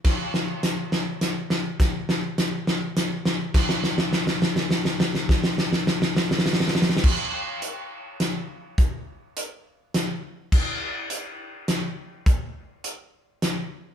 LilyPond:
\new DrumStaff \with { instrumentName = "Drums" } \drummode { \time 3/4 \tempo 4 = 103 <cymc bd sn>8 sn8 <hh sn>8 sn8 <hh sn>8 sn8 | <hh bd sn>8 sn8 <hh sn>8 sn8 <hh sn>8 sn8 | <cymc bd sn>16 sn16 sn16 sn16 sn16 sn16 sn16 sn16 sn16 sn16 sn16 sn16 | <bd sn>16 sn16 sn16 sn16 sn16 sn16 sn16 sn32 sn32 sn32 sn32 sn32 sn32 sn32 sn32 sn32 sn32 |
<cymc bd>4 hh4 <hh sn>4 | <hh bd>4 hh4 <hh sn>4 | <cymc bd>4 hh4 <hh sn>4 | <hh bd>4 hh4 <hh sn>4 | }